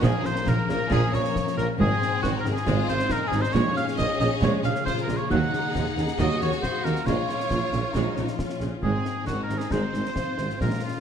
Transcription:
Already playing: violin section A#3, harp A#4
0.02 double bass section A#1, tuba A#1, cello section A#2, timpani A#2, harp A#2, viola section C#3 F3, oboe G#4, violin section G#4, concert bass drum, snare
0.24 harp F3, violin section C5, oboe C5, snare
0.36 snare
0.46 double bass section A#1, tuba A#1, cello section A#2, viola section C#3, violin section A#4, harp A#4, oboe A#4, concert bass drum, snare
0.68 double bass section A#1, tuba A#1, cello section A#2, viola section C#3, harp C#4, violin section A#4, oboe A#4, snare
0.91 double bass section A#1, tuba A#1, cello section A#2, viola section F3, harp A#3, violin section G#4, oboe G#4, concert bass drum, snare
1.13 double bass section A#1, tuba A#1, cello section A#2, viola section C#3, harp F3, violin section C#5, oboe C#5, snare
1.24 snare
1.35 harp A#4, concert bass drum, snare
1.47 snare
1.57 double bass section A#1, tuba A#1, cello section A#2, viola section C#3, harp C#4, violin section A#4, oboe A#4, snare
1.78 double bass section G#1, tuba G#1, harp G#2, cello section G#2, viola section G#3, violin section C4 G#4, oboe G#4, concert bass drum
2.00 harp G#3, snare
2.22 double bass section G#1, tuba G#1, cello section G#2, viola section D#3, violin section F#4, oboe F#4, harp C5, concert bass drum, snare
2.36 violin section A#4
2.41 harp D#4, oboe A#4
2.45 double bass section G#1, tuba G#1, cello section G#2, viola section C3, snare
2.52 violin section G#4, oboe G#4
2.56 snare
2.66 double bass section G#1, tuba G#1, cello section G#2, harp D#3, viola section G#3 C4, violin section F4, concert bass drum, snare
2.88 double bass section G#1, tuba G#1, cello section G#2, viola section C3, harp G#3, violin section C5, oboe C5, snare
2.99 snare
3.09 violin section D#4 A#4, oboe A#4, harp C5, concert bass drum, snare
3.26 violin section G#4, oboe G#4
3.31 double bass section G#1, tuba G#1, cello section G#2, viola section C3, harp D#4, snare
3.40 violin section C5, oboe C5, snare
3.52 tuba A#1, double bass section A#1, harp A#2, timpani A#2, cello section A#2, viola section G#3 G#4, violin section C#4 C#5, oboe C#5, concert bass drum, snare
3.75 harp G#3, violin section F5, oboe F5, snare
3.88 snare
3.98 tuba A#1, double bass section A#1, cello section A#2, viola section F3, harp A#4, violin section D#5, oboe D#5, concert bass drum, snare
4.19 double bass section A#1, tuba A#1, cello section A#2, viola section C#3, harp A#3, violin section D#5, oboe D#5, snare
4.41 double bass section A#1, tuba A#1, cello section A#2, harp C#3, viola section G#3, violin section C#5, oboe C#5, concert bass drum, snare
4.63 tuba A#1, double bass section A#1, cello section A#2, viola section C#3, harp G#3, violin section F5, oboe F5, snare
4.75 snare
4.85 violin section F4 C5, harp A#4, oboe C5, concert bass drum, snare
4.98 snare
5.02 violin section A#4, oboe A#4
5.08 tuba A#1, double bass section A#1, cello section A#2, viola section C#3, harp A#3, snare
5.17 violin section C#5, oboe C#5
5.30 tuba D#2, double bass section D#2, timpani D#3, cello section D#3, harp D#3, viola section F#3, violin section D#4 F#5, oboe F#5, concert bass drum, crash
5.53 harp A#3, snare
5.75 tuba D#2, double bass section D#2, cello section D#3, viola section F3, harp D#4, concert bass drum, snare
5.97 double bass section D#2, tuba D#2, cello section D#3, viola section D#3, harp A#4, snare
6.08 snare
6.19 double bass section D#2, tuba D#2, cello section D#3, harp F#3, viola section F#3, violin section F#4 D#5, oboe D#5, concert bass drum, snare
6.40 double bass section D#2, tuba D#2, cello section D#3, viola section D#3, harp A#3, violin section C#5, oboe C#5, snare
6.52 snare
6.62 oboe C5, violin section C5, harp F5, concert bass drum, snare
6.84 tuba D#2, double bass section D#2, cello section D#3, viola section D#3, harp A#4, violin section A#4, oboe A#4, snare
6.96 snare
7.06 double bass section A#1, tuba A#1, harp A#2, cello section A#2, viola section G#3 F4, violin section F4 C#5, oboe C#5, concert bass drum, snare
7.29 harp A#3, snare
7.40 snare
7.50 double bass section A#1, tuba A#1, cello section A#2, viola section F3, harp F4, concert bass drum, snare
7.72 double bass section A#1, tuba A#1, cello section A#2, viola section C#3, harp G#4, snare
7.94 double bass section A#1, tuba A#1, cello section A#2, harp F3, viola section G#3, violin section D#4, concert bass drum, snare
8.17 double bass section A#1, tuba A#1, cello section A#2, viola section C#3, harp A#3, snare
8.28 snare
8.39 violin section C#4, harp F4, concert bass drum, snare
8.50 snare
8.60 double bass section A#1, tuba A#1, cello section A#2, viola section C#3, harp G#4, snare
8.82 double bass section G#1, tuba G#1, cello section G#2, harp G#2, viola section G#3 C4, violin section C4 G#4, oboe G#4, concert bass drum
9.05 harp G#3, snare
9.26 double bass section G#1, tuba G#1, cello section G#2, viola section D#3, violin section D#4 F#4, oboe F#4, harp G#4, concert bass drum, snare
9.43 violin section A#4, oboe A#4
9.50 double bass section G#1, tuba G#1, cello section G#2, viola section C3, harp C4, snare
9.58 oboe G#4, violin section G#4, snare
9.71 double bass section G#1, tuba G#1, cello section G#2, harp D#3, viola section G#3, oboe C5, violin section C5, concert bass drum, snare
9.94 double bass section G#1, tuba G#1, cello section G#2, viola section C3, harp G#3, snare
10.05 snare
10.16 violin section F4, harp G#4, concert bass drum, snare
10.38 double bass section G#1, tuba G#1, cello section G#2, viola section C3, harp C4, snare
10.50 snare
10.61 double bass section A#1, tuba A#1, timpani A#2, cello section A#2, harp A#2, viola section G#3 C#4, violin section A#4, oboe A#4, concert bass drum, snare
10.83 harp G#3, violin section F4, oboe F4

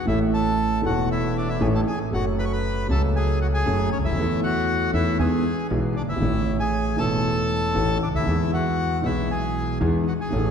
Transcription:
0.05 grand piano A1 A2 E3 A3 C#4, upright bass A1, bandoneon E4 E5
0.09 grand piano A4
0.34 bandoneon A4 A5
0.82 grand piano E1 E2 E3 A3 C#4 A4, upright bass E1
0.86 bandoneon F#4 F#5
1.11 bandoneon E4 E5
1.37 bandoneon D4 D5
1.49 bandoneon E4 E5
1.60 grand piano A1 A2 E3 A3 C#4 A4, upright bass A1, bandoneon G#4 G#5
1.75 bandoneon A4 A5
1.87 bandoneon G#4 G#5
2.11 upright bass F#1, grand piano F#2 F#3 A3 C#4 A4, bandoneon F#4 F#5
2.39 bandoneon B4 B5
2.45 bandoneon C#6
2.53 bandoneon B4 B5
2.87 grand piano C#2 C#3 F#3 A3 C#4, upright bass C#2, bandoneon A5
2.92 grand piano A4, bandoneon A4
3.16 bandoneon G#4 G#5
3.42 bandoneon F#4 F#5
3.54 bandoneon G#4 G#5
3.66 upright bass F#1, grand piano F#2 F#3 A3 C#4 A4
3.92 bandoneon C#4 C#5
3.98 upright bass C#2, grand piano C#2
4.04 upright bass D2, grand piano D2, bandoneon E4 E5
4.11 upright bass D#2, grand piano D#2
4.17 upright bass E2, grand piano E2 E3 A3 C#4 A4
4.44 bandoneon F#4 F#5
4.93 upright bass E2, grand piano E2 E3 A3 C#4 A4, bandoneon E4 E5
5.19 upright bass E2, grand piano E2 E3 G#3 B3 G#4, bandoneon G#4 G#5
5.70 upright bass B1, grand piano B1 B2 E3 G#3 B3 G#4
5.96 bandoneon D4 D5
6.02 upright bass F#1, grand piano F#1
6.09 upright bass G1, grand piano G1, bandoneon E4 E5
6.15 upright bass G#1, grand piano G#1
6.20 upright bass A1, grand piano A1 A2 E3 A3 C#4 C#5
6.60 bandoneon G#4 G#5
6.96 grand piano E1 E2 E3 A3 C#4 A4, upright bass E1, bandoneon A4 A5
7.75 grand piano A1 A2 E3 A3 C#4 A4, upright bass A1
8.03 bandoneon D4 D5
8.07 grand piano C#2, upright bass C#2
8.14 grand piano D2, upright bass D2, bandoneon E4 E5
8.20 grand piano D#2, upright bass D#2
8.24 grand piano E2 E3 G#3 B3 G#4, upright bass E2
8.54 bandoneon F#4 F#5
9.02 grand piano B1 B2 E3 G#3 B3 G#4, upright bass B1, bandoneon E4 E5
9.31 bandoneon G#4 G#5
9.81 grand piano E2 E3 G#3 B3 G#4, upright bass E2
10.08 bandoneon F#4 F#5
10.21 bandoneon G#4 G#5
10.30 grand piano A1 A2 E3 A3 C#4 A4, upright bass A1

